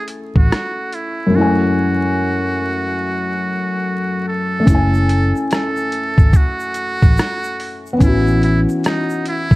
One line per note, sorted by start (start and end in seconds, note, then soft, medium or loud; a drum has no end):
0.00 1.26 A3 medium
0.00 1.29 C#4 medium
0.00 1.31 E4 medium
0.00 1.34 G#5 medium
0.08 closed hi-hat medium
0.36 0.50 A1 medium
0.36 0.96 F#4 medium
0.36 kick medium
0.52 cross-stick loud
0.52 closed hi-hat medium
0.93 1.37 E4 medium
0.93 closed hi-hat medium
1.27 4.60 F#2 medium
1.27 1.40 G#3 soft
1.34 4.58 A3 medium
1.34 4.63 C#4 medium
1.34 4.65 E4 medium
1.34 4.26 F#4 medium
1.41 4.67 G#5 medium
4.28 5.48 A4 medium
4.60 7.93 A3 medium
4.65 5.32 F#1 loud
4.65 7.95 C#4 medium
4.65 kick medium
4.65 closed hi-hat medium
4.65 shaker medium
4.70 7.98 E4 medium
4.75 8.00 G#5 medium
4.94 shaker medium
5.09 closed hi-hat medium
5.36 shaker soft
5.51 6.38 A4 medium
5.51 cross-stick loud
5.51 closed hi-hat medium
5.51 shaker medium
5.77 shaker medium
5.92 closed hi-hat medium
6.18 6.33 G#1 medium
6.18 kick medium
6.18 shaker soft
6.33 7.86 F#4 loud
6.33 kick loud
6.33 closed hi-hat medium
6.33 shaker medium
6.60 shaker soft
6.74 closed hi-hat medium
6.74 shaker medium
7.02 7.17 A1 medium
7.02 kick medium
7.02 shaker soft
7.17 cross-stick loud
7.17 closed hi-hat medium
7.17 shaker medium
7.44 shaker medium
7.60 open hi-hat medium
7.86 shaker medium
7.93 9.56 B3 medium
7.98 8.65 A1 loud
7.98 9.56 C#4 medium
7.98 kick medium
7.98 closed hi-hat medium
7.98 shaker medium
8.03 9.56 E3 medium
8.03 8.41 E4 medium
8.08 9.56 F#4 medium
8.27 shaker soft
8.43 8.60 E4 medium
8.43 closed hi-hat medium
8.69 shaker soft
8.84 9.24 D#4 medium
8.84 cross-stick loud
8.84 closed hi-hat medium
8.84 shaker medium
9.10 shaker soft
9.26 9.56 E4 loud
9.26 closed hi-hat medium
9.51 9.56 B1 medium
9.51 kick loud
9.51 shaker soft